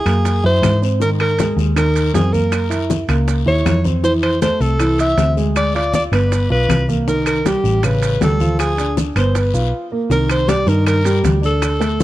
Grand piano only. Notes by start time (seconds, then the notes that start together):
0.06 A#3 A#4
0.44 E4 E5
0.82 C4 C5
1.00 D#3 D#4
1.38 G#3 G#4
1.76 D#3 D#4
2.14 C4 C5
2.32 A#3 A#4
2.70 E4 E5
3.09 A#3 A#4
3.46 E4 E5
3.85 C4 C5
4.03 E3 E4
4.42 A3 A4
4.80 E3 E4
5.17 C4 C5
5.37 G#3 G#4
5.75 F4 F5
6.12 B3 B4
6.50 F4 F5
6.88 A#3 A#4
7.07 D#3 D#4
7.45 G3 G4
7.83 C#3 C#4
8.21 G3 G4
8.41 F3 F4
8.78 D4 D5
9.16 B3 B4
9.54 F4 F5
9.92 A#3 A#4
10.10 D#3 D#4
10.48 G3 G4
10.67 D#3 D#4
11.05 G3 G4
11.42 D4 D5
11.80 A3 A4